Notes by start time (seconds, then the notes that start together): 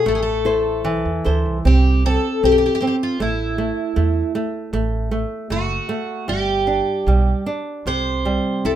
0.06 A1 A3 A4
0.15 G#4
0.22 A4
0.45 E4 A4 C5
0.85 B1 E3
1.05 E2
1.24 D2 E4 A4 C5
1.46 C2
1.65 C2 C4 G4
2.06 C4 A4
2.43 B1 C4 G4
2.52 G4
2.58 G4
2.66 G4
2.75 G4
2.81 C4 G4
2.87 G4
3.03 F4
3.20 A1 A3 E4
3.58 A3
3.96 E2 A3
4.35 A3
4.73 A1 A3
5.11 A3
5.50 F#1 A3 F#4
5.89 A3
6.28 G1 G3 G4
6.67 D4
7.07 B1 G3
7.46 D4
7.86 C2 C3 C5
8.25 G3
8.65 C2 E4 A4